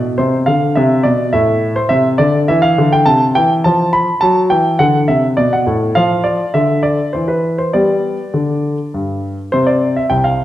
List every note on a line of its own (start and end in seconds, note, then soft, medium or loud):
0.00 0.18 B2 soft
0.18 0.47 C3 soft
0.18 0.35 C5 medium
0.46 0.75 D3 soft
0.46 0.73 F5 medium
0.75 1.04 C3 medium
0.75 1.05 E5 medium
1.03 1.32 B2 soft
1.03 1.30 D5 medium
1.33 1.75 A2 medium
1.33 1.73 E5 medium
1.76 1.91 C5 medium
1.89 2.18 C3 medium
1.89 2.07 E5 medium
2.18 2.47 D3 soft
2.18 2.36 D5 medium
2.48 2.76 E3 medium
2.48 2.63 E5 medium
2.62 2.88 F5 medium
2.78 3.06 D3 medium
2.93 3.07 G5 medium
3.06 3.34 C3 medium
3.06 3.23 A5 medium
3.35 3.64 E3 medium
3.35 3.53 G5 medium
3.64 4.07 F3 soft
3.64 3.93 A5 medium
3.93 4.22 B5 medium
4.21 4.50 F#3 medium
4.21 4.38 A5 medium
4.50 4.78 E3 soft
4.50 4.80 G5 medium
4.79 5.07 D3 medium
4.79 4.97 F#5 medium
5.08 5.37 C3 soft
5.08 5.26 E5 medium
5.37 5.65 B2 soft
5.37 5.52 D5 medium
5.53 5.67 F#5 medium
5.66 5.94 A2 soft
5.95 6.38 F3 medium
5.95 6.25 F5 medium
6.24 6.54 D5 medium
6.54 6.97 D3 soft
6.54 6.84 E5 medium
6.83 7.13 D5 medium
7.13 7.57 E3 soft
7.13 7.28 C5 medium
7.28 7.58 B4 soft
7.58 7.73 C5 soft
7.73 8.16 G3 soft
7.73 8.22 B3 soft
7.73 8.22 G4 soft
7.73 8.94 D5 medium
8.34 8.76 D3 soft
8.94 9.36 G2 soft
9.52 10.00 C3 soft
9.52 10.45 C4 soft
9.52 9.67 C5 medium
9.67 9.93 D5 medium
9.96 10.11 E5 soft
10.10 10.45 C2 soft
10.10 10.25 G5 medium
10.24 10.45 F5 medium